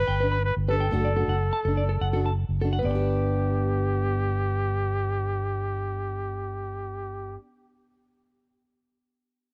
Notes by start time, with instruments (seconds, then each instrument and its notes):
Already playing: trumpet B4
0.08 fingered electric bass G1, clean electric guitar G5
0.20 steel-string acoustic guitar D4, clean electric guitar B4
0.32 clean electric guitar B5
0.44 trumpet B4
0.57 fingered electric bass G1
0.68 steel-string acoustic guitar D4 G4, trumpet A4, clean electric guitar B4
0.80 clean electric guitar G5
0.91 fingered electric bass F#1, steel-string acoustic guitar A3 D4 F#4, clean electric guitar A4
1.05 clean electric guitar D5
1.16 steel-string acoustic guitar D4 F#4, clean electric guitar A4
1.28 fingered electric bass F#1, clean electric guitar F#5
1.53 clean electric guitar A5
1.65 fingered electric bass F#1, steel-string acoustic guitar D4, clean electric guitar A4, muted steel-string acoustic guitar stroke
1.77 clean electric guitar D5
1.89 clean electric guitar A4
2.01 fingered electric bass F#1, clean electric guitar F#5
2.13 steel-string acoustic guitar D4 F#4, clean electric guitar A4
2.26 clean electric guitar A5
2.49 fingered electric bass F#1
2.61 steel-string acoustic guitar D4 F#4, clean electric guitar A4
2.73 clean electric guitar F#5
2.79 steel-string acoustic guitar B3, clean electric guitar B4
2.84 fingered electric bass G1, trumpet G4, clean electric guitar D5
2.90 steel-string acoustic guitar D4, muted clean electric guitar stroke
2.95 steel-string acoustic guitar G4